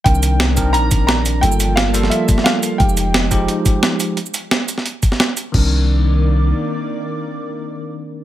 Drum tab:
CC |----------------|----------------|----------------|----------------|
HH |x-x-x-x-x-x-x-x-|x-x-x-x-x-x-x-x-|x-x-x-x-x-x-x-x-|x-x-x-x-x-x-x-x-|
SH |-xx---x---x---x-|-xx---x---x---x-|-xx---x---x---x-|-xx---x---x---x-|
SD |----o-------o---|----o--o---oo---|----o-------o---|----o--o---oo---|
BD |o-----o---o-----|----------o-----|o-----o---o-----|----------o-----|

CC |x---------------|----------------|
HH |----------------|----------------|
SH |----------------|----------------|
SD |----------------|----------------|
BD |o---------------|----------------|